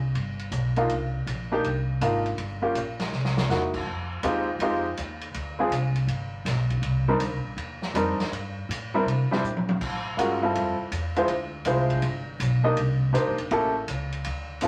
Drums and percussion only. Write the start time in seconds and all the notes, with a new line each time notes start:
0.15 ride
0.39 ride
0.52 hi-hat pedal, ride
0.76 ride
0.89 ride
1.27 hi-hat pedal, ride
1.64 ride
2.01 hi-hat pedal, ride
2.26 ride
2.38 ride
2.75 hi-hat pedal, ride
3.00 snare, ride
3.12 snare
3.25 snare
3.37 snare
3.50 snare, hi-hat pedal
3.74 kick, crash
4.23 hi-hat pedal, ride
4.60 ride
4.97 hi-hat pedal, ride
5.21 ride
5.34 ride
5.72 hi-hat pedal, ride
5.95 ride
6.08 ride
6.46 snare, hi-hat pedal, ride
6.70 kick, ride
6.83 ride
7.20 hi-hat pedal, ride
7.58 ride
7.82 snare
7.95 hi-hat pedal, ride
8.20 snare, ride
8.33 ride
8.71 hi-hat pedal, ride
9.08 ride
9.32 snare
9.44 hi-hat pedal
9.57 high tom
9.69 high tom
9.81 kick, crash
10.19 hi-hat pedal, ride
10.55 ride
10.92 hi-hat pedal, ride
11.16 ride
11.28 ride
11.65 hi-hat pedal, ride
11.90 kick, ride
12.02 ride
12.40 hi-hat pedal, ride
12.77 ride
13.15 hi-hat pedal, ride
13.38 ride
13.51 ride
13.88 hi-hat pedal, ride
14.12 ride
14.24 ride
14.61 hi-hat pedal, ride